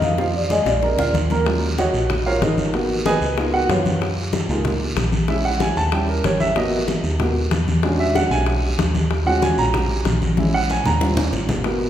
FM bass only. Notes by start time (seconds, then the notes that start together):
Already playing: F2
0.65 A#1
0.97 D2
1.13 D#2
1.94 A#1
2.41 G#1
3.21 C#2
3.69 F#2
4.48 C#2
4.96 A#1
5.76 D#2
6.24 G#1
7.04 D#2
7.51 E2
8.31 B1
8.78 D#2
9.58 A#1
10.05 A#1
10.85 D#2
11.32 G#1